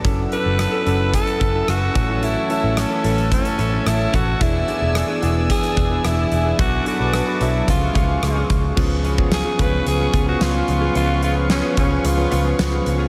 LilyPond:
<<
  \new Staff \with { instrumentName = "Analog synth pad" } { \time 4/4 \key cis \phrygian \tempo 4 = 110 << { e'''1~ | e'''1 | e'''1 | d'''2 cis'''2 |
cis'''1~ | cis'''1 | } \\ { <a' fis''>2.~ <a' fis''>8 <cis'' a''>8~ | <cis'' a''>1 | <d'' gis''>1 | <b' a''>2 <gis' eis''>2 |
<b' eis''>1~ | <b' eis''>1 | } >> }
  \new Staff \with { instrumentName = "Alto saxophone" } { \time 4/4 \key cis \phrygian r8 b'4. a'4 fis'4 | e'8 e'8 cis'4 cis'4 e'8 fis'8 | e'4. r8 gis'4 e'4 | fis'8 fis'4 e'8 eis'4. r8 |
r4 gis'8 b'8 gis'8. fis'16 eis'4 | eis'8 eis'8 cis'8 cis'8 eis'4 r4 | }
  \new Staff \with { instrumentName = "Clean electric guitar" } { \time 4/4 \key cis \phrygian <cis' e' a'>16 r16 <cis' e' a'>16 <cis' e' a'>16 r16 <cis' e' a'>16 <cis' e' a'>16 r8. <cis' e' a'>16 <cis' e' a'>16 <cis' e' a'>16 r8 <cis' e' a'>16 | <cis' e' a'>16 r16 <cis' e' a'>16 <cis' e' a'>16 r16 <cis' e' a'>16 <cis' e' a'>16 r8. <cis' e' a'>16 <cis' e' a'>16 r8 <cis' e' a'>16 r16 | <b d' gis'>16 r16 <b d' gis'>16 <b d' gis'>16 r16 <b d' gis'>16 <b d' gis'>16 r8. <b d' gis'>16 <b d' gis'>16 <b d' gis'>16 r8 <b d' gis'>16 | <d' fis' a'>16 r16 <d' fis' a'>16 <d' fis' a'>16 r16 <d' fis' a'>16 <d' fis' a'>16 r8. <cis' eis' gis'>16 <cis' eis' gis'>16 r16 <cis' eis' gis'>16 r8 |
<b eis' gis'>16 r16 <b eis' gis'>16 <b eis' gis'>16 r16 <b eis' gis'>16 <b eis' gis'>16 r8. <b eis' gis'>16 <b eis' gis'>16 <b eis' gis'>16 r8 <b eis' gis'>16 | <b eis' gis'>16 r16 <b eis' gis'>16 <b eis' gis'>16 r16 <b eis' gis'>16 <b eis' gis'>16 r8. <b eis' gis'>16 <b eis' gis'>16 <b eis' gis'>16 r8 <b eis' gis'>16 | }
  \new Staff \with { instrumentName = "Tine electric piano" } { \time 4/4 \key cis \phrygian <fis cis' e' a'>4. <fis cis' e' a'>4~ <fis cis' e' a'>16 <fis cis' e' a'>8. <e a cis' a'>8~ | <e a cis' a'>8 <e a cis' a'>4 <e a cis' a'>4.~ <e a cis' a'>16 r8. | <e b d' gis'>4. <e b d' gis'>4~ <e b d' gis'>16 <e b d' b'>4~ <e b d' b'>16 | <fis b d' a'>8 <fis b d' b'>4 <fis b d' fis'>8 <eis gis cis' gis'>4.~ <eis gis cis' gis'>16 r16 |
<eis b cis' gis'>8. <eis b cis' gis'>8. <eis b cis' eis'>8. <eis b cis' gis'>8 <eis b cis' gis'>4~ <eis b cis' gis'>16 | <eis b cis' eis'>8. <eis b cis' gis'>8. <eis b cis' gis'>8. <eis b cis' b'>8 <eis b cis' gis'>4~ <eis b cis' gis'>16 | }
  \new Staff \with { instrumentName = "Picked electric bass" } { \clef bass \time 4/4 \key cis \phrygian fis,,8 r16 fis,,8 r16 fis,,8. r16 fis,,8 fis,,8 a,,8~ | a,,8 r16 a,,8 r16 a,,8. r16 a,,8 a,,8 a,,8 | e,,8 r16 e,,8 r16 e,,8. r16 e,,8 e,,8 e,,8 | b,,8 r16 b,,8 r16 b,,8 cis,8 cis,8 cis,8 cis,8 |
cis,4~ cis,16 r16 cis,8 cis,8 cis,8 cis,8 cis,8 | cis,4~ cis,16 r16 cis,8 cis,8 cis,8 cis,8 cis,8 | }
  \new DrumStaff \with { instrumentName = "Drums" } \drummode { \time 4/4 <hh bd>8 hh8 <hh ss>8 hh8 <hh bd>16 hh16 <hh bd>8 <hh ss>8 <hh bd>8 | hh8 hh8 <hh ss>8 hh16 hh16 <hh bd>16 hh16 hh8 <hh ss>8 <hh bd>8 | <hh bd>8 hh8 <hh ss>8 hh8 <hh bd>16 hh16 <hh bd>8 <hh ss>8 hh8 | <hh bd>8 hh8 <hh ss>8 hh8 <hh bd>8 <hh bd>8 <hh ss>8 <hh bd>8 |
<cymc bd>8 hh16 bd16 <hh sn>8 <hh bd>8 hh8 <hh bd>8 <hh sn>8 hh8 | hh8 hh8 <hh sn>8 <hh bd>8 hh8 hh8 <hh sn>8 hh8 | }
>>